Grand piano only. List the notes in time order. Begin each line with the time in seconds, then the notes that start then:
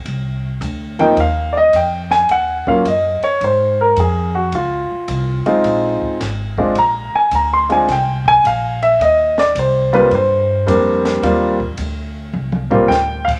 0.99 F3 A#3 C4 D#4 G5
1.20 F5
1.53 D5
1.57 D#5
1.76 G5
2.11 G#5
2.31 F#5
2.67 F#3 A#3 C#4 F4 F5
2.88 D#5
3.24 C#5
3.44 C5
3.81 A#4
4.00 G#4
4.35 F#4
4.55 F4
5.46 G#3 C4 D#4 F4
6.58 G#3 C4 D4 F4
6.78 A#5
7.15 G#5
7.35 A#5
7.53 C6
7.69 G#3 C4 D4 F4 G#5
7.92 G5
8.28 G#5
8.47 F5
8.83 E5
9.02 D#5
9.39 D5
9.59 C5
9.93 G3 A#3 C4 F4 B4
10.15 C5
10.66 G3 A#3 C4 D4
11.23 G3 A#3 C4 F4
12.70 G3 A#3 C4 F4
12.88 G5
13.25 F5